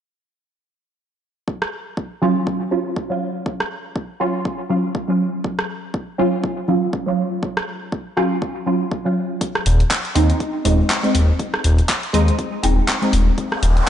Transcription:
1.48 kick loud
1.62 cross-stick medium
1.97 kick loud
2.22 2.69 F#3 medium
2.22 2.69 C#4 medium
2.22 2.69 F4 loud
2.47 kick loud
2.71 3.07 F#3 medium
2.71 3.07 C#4 medium
2.71 3.07 F4 medium
2.96 kick loud
3.10 4.17 F#3 medium
3.10 4.18 C#4 medium
3.10 4.18 F4 medium
3.46 kick loud
3.60 cross-stick medium
3.96 kick loud
4.20 4.67 F#3 loud
4.20 4.67 C#4 medium
4.20 4.68 F4 loud
4.45 kick loud
4.70 5.05 F#3 medium
4.70 5.06 C#4 medium
4.70 5.06 F4 medium
4.95 kick loud
5.08 6.16 F#3 medium
5.08 6.16 C#4 medium
5.08 6.17 F4 medium
5.44 kick loud
5.59 cross-stick medium
5.94 kick loud
6.18 6.66 F#3 medium
6.18 6.66 C#4 medium
6.18 6.66 F4 loud
6.44 kick loud
6.68 7.04 F#3 medium
6.68 7.04 C#4 medium
6.68 7.04 F4 medium
6.93 kick loud
7.06 8.14 F#3 medium
7.06 8.15 C#4 medium
7.06 8.15 F4 medium
7.43 kick loud
7.57 cross-stick medium
7.92 kick loud
8.17 8.64 F#3 loud
8.17 8.64 C#4 medium
8.17 8.64 F4 loud
8.17 cross-stick medium
8.42 kick loud
8.66 9.02 F#3 medium
8.66 9.02 C#4 medium
8.66 9.03 F4 medium
8.91 kick loud
9.05 9.40 F#3 medium
9.05 9.40 C#4 medium
9.05 9.40 F4 medium
9.41 kick loud
9.41 closed hi-hat medium
9.55 cross-stick medium
9.66 9.82 D#1 loud
9.66 open hi-hat medium
9.80 closed hi-hat soft
9.91 kick loud
9.91 clap loud
9.91 closed hi-hat medium
10.05 closed hi-hat soft
10.15 10.32 D#2 medium
10.15 10.62 G#3 medium
10.15 10.62 C4 medium
10.15 10.63 D#4 loud
10.15 open hi-hat loud
10.30 closed hi-hat soft
10.40 kick loud
10.40 closed hi-hat medium
10.65 10.82 D#1 medium
10.65 11.00 G#3 medium
10.65 11.01 C4 medium
10.65 11.01 D#4 medium
10.65 open hi-hat medium
10.90 kick loud
10.90 clap loud
10.90 closed hi-hat medium
11.03 12.11 G#3 medium
11.03 12.11 C4 medium
11.03 12.12 D#4 medium
11.03 closed hi-hat soft
11.15 11.31 D#1 loud
11.15 open hi-hat loud
11.39 kick loud
11.39 closed hi-hat medium
11.54 cross-stick medium
11.64 11.81 D#1 loud
11.64 open hi-hat medium
11.78 closed hi-hat soft
11.89 kick loud
11.89 clap loud
11.89 closed hi-hat medium
12.03 closed hi-hat soft
12.13 12.30 D#2 medium
12.13 12.61 G#3 medium
12.13 12.61 C4 medium
12.13 12.61 D#4 loud
12.13 open hi-hat medium
12.28 closed hi-hat soft
12.39 kick loud
12.39 closed hi-hat medium
12.63 12.80 D#1 medium
12.63 12.99 G#3 medium
12.63 12.99 C4 medium
12.63 12.99 D#4 medium
12.63 open hi-hat medium
12.88 kick loud
12.88 clap loud
12.88 closed hi-hat medium
13.01 13.89 G#3 medium
13.01 13.89 C4 medium
13.01 13.89 D#4 medium
13.01 closed hi-hat soft
13.13 13.30 D#1 loud
13.13 open hi-hat loud
13.38 kick loud
13.38 closed hi-hat medium
13.38 riser medium
13.52 cross-stick medium
13.62 13.79 D#1 medium
13.62 open hi-hat loud
13.77 closed hi-hat soft

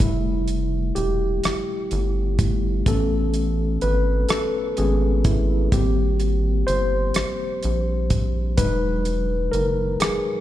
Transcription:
0.00 0.92 F1 medium
0.00 0.64 G3 medium
0.00 0.64 A3 soft
0.00 0.64 E4 medium
0.00 kick loud
0.00 closed hi-hat medium
0.48 closed hi-hat soft
0.95 1.40 E1 medium
0.95 2.92 G4 medium
0.95 closed hi-hat soft
1.44 1.54 G1 soft
1.44 cross-stick medium
1.44 closed hi-hat medium
1.91 2.83 G1 medium
1.91 closed hi-hat soft
2.39 2.83 G3 soft
2.39 2.83 A3 soft
2.39 2.83 E4 soft
2.39 kick medium
2.39 closed hi-hat soft
2.86 3.78 A1 medium
2.86 5.69 A3 soft
2.86 4.77 B3 soft
2.86 4.78 C#4 medium
2.86 3.85 A4 medium
2.86 kick medium
2.86 closed hi-hat medium
3.34 closed hi-hat soft
3.81 4.26 G#1 medium
3.81 4.26 B4 medium
3.81 closed hi-hat soft
4.29 4.40 G#1 soft
4.29 4.78 A4 medium
4.29 cross-stick loud
4.29 closed hi-hat medium
4.77 5.69 G#1 medium
4.77 5.21 G#3 soft
4.77 5.21 B3 soft
4.77 5.21 C#4 soft
4.77 5.26 G#4 medium
4.77 closed hi-hat soft
5.24 5.74 E4 medium
5.24 kick medium
5.24 closed hi-hat soft
5.72 6.64 G#1 loud
5.72 6.36 G3 soft
5.72 6.36 A#3 soft
5.72 6.36 C4 medium
5.72 6.71 G4 medium
5.72 kick loud
5.72 closed hi-hat medium
6.20 closed hi-hat soft
6.67 7.12 G1 medium
6.67 8.63 C5 medium
6.67 closed hi-hat soft
7.14 7.26 A#1 soft
7.14 cross-stick loud
7.14 closed hi-hat medium
7.63 8.60 A#1 medium
7.63 closed hi-hat soft
8.10 kick medium
8.10 closed hi-hat soft
8.57 9.49 E1 medium
8.57 9.21 F#3 soft
8.57 9.21 G#3 soft
8.57 9.22 D#4 medium
8.57 9.56 B4 medium
8.57 kick loud
8.57 closed hi-hat medium
9.05 closed hi-hat soft
9.52 9.97 F#1 medium
9.52 10.01 A#4 medium
9.52 closed hi-hat soft
10.00 10.11 F#1 soft
10.00 10.41 G#4 medium
10.00 cross-stick loud
10.00 closed hi-hat medium

